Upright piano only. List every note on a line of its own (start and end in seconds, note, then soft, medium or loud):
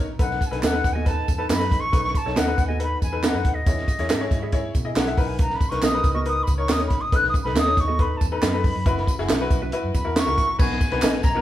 0.19 0.38 D#4 medium
0.19 0.38 A4 medium
0.19 0.38 B4 medium
0.51 0.64 D#4 medium
0.51 0.64 A4 medium
0.51 0.64 B4 medium
0.73 0.92 D#4 medium
0.73 0.92 A4 medium
0.73 0.92 B4 medium
1.05 1.24 D#4 medium
1.05 1.24 A4 medium
1.05 1.25 B4 medium
1.38 1.51 D#4 medium
1.38 1.51 A4 medium
1.38 1.51 B4 medium
1.59 1.79 D#4 medium
1.59 1.79 A4 medium
1.59 1.79 B4 medium
1.92 2.12 D#4 medium
1.92 2.11 A4 medium
1.92 2.12 B4 medium
2.26 2.38 D#4 medium
2.26 2.38 A4 medium
2.26 2.38 C#5 medium
2.47 2.66 D#4 medium
2.47 2.66 A4 medium
2.47 2.66 B4 medium
2.79 2.98 D#4 medium
2.79 2.98 A4 medium
2.79 2.98 B4 medium
3.12 3.25 D#4 medium
3.12 3.25 A4 medium
3.12 3.25 B4 medium
3.34 3.53 D#4 medium
3.34 3.53 A4 medium
3.34 3.53 B4 medium
3.67 3.86 E4 medium
3.67 3.86 G#4 medium
3.67 3.85 C#5 medium
3.99 4.12 E4 medium
3.99 4.12 G#4 medium
3.99 4.12 C#5 medium
4.21 4.40 E4 medium
4.21 4.40 G#4 medium
4.21 4.40 C#5 loud
4.53 4.72 E4 medium
4.53 4.72 G#4 medium
4.53 4.72 C#5 medium
4.85 4.98 E4 medium
4.85 4.98 G#4 medium
4.85 4.98 D#5 medium
5.07 5.18 E4 medium
5.07 5.18 G#4 medium
5.07 5.18 E5 medium
5.18 5.61 D#4 medium
5.18 5.61 A#4 medium
5.18 5.61 B4 medium
5.71 5.84 D#4 medium
5.71 5.84 A#4 medium
5.71 5.84 B4 medium
5.93 6.12 D#4 medium
5.93 6.13 A#4 medium
5.93 6.13 B4 medium
6.26 6.45 D#4 medium
6.26 6.45 A#4 medium
6.26 6.45 B4 medium
6.58 6.71 D#4 medium
6.58 6.71 A#4 medium
6.58 6.71 C#5 medium
6.79 6.99 D#4 medium
6.79 6.99 A#4 medium
6.79 6.99 C#5 medium
7.12 7.32 D#4 medium
7.12 7.32 A4 medium
7.12 7.32 B4 medium
7.45 7.58 D#4 medium
7.45 7.58 A4 medium
7.45 7.58 B4 medium
7.66 7.86 D#4 medium
7.66 7.86 A4 medium
7.66 7.86 C#5 medium
7.99 8.18 D#4 medium
7.99 8.18 A4 medium
7.99 8.18 B4 medium
8.32 8.44 D#4 medium
8.32 8.45 A4 medium
8.32 8.45 B4 medium
8.54 8.73 D#4 medium
8.54 8.73 A4 medium
8.54 8.73 B4 medium
8.86 9.05 E4 medium
8.86 9.05 F#4 medium
8.86 9.05 B4 medium
9.19 9.31 E4 medium
9.19 9.31 F#4 medium
9.19 9.31 G#4 loud
9.41 9.59 E4 medium
9.41 9.59 F#4 medium
9.41 9.60 B4 loud
9.73 9.92 E4 medium
9.73 9.92 F#4 medium
9.73 9.92 B4 medium
10.04 10.17 E4 medium
10.04 10.18 F#4 medium
10.04 10.18 A#4 medium
10.26 10.45 E4 medium
10.26 10.45 F#4 medium
10.26 10.46 A#4 medium
10.58 10.78 B3 medium
10.58 10.78 D#4 medium
10.58 10.78 F#4 medium
10.58 10.78 B4 medium
10.92 11.17 B3 medium
10.92 11.17 D#4 medium
10.92 11.17 F#4 medium
10.92 11.17 B4 medium
11.35 11.41 B3 medium
11.35 11.41 D#4 medium
11.35 11.41 F#4 medium
11.35 11.41 A#4 medium